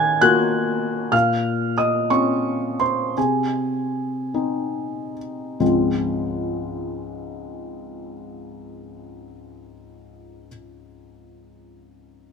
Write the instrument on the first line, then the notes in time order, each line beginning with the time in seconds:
felt piano
Already playing: D#3 F#5 G#5 F#6 G#6
0.21 A#3 F4 F#4 F#6
1.12 A#2 F5 F6
1.78 D#5 D#6
2.10 C4 C#4 F4 C#6
2.80 C5 C6
3.17 C3 G#4 G#5
4.34 C4 D#4
5.60 C#2 G#2 F3 G#3 C4 F4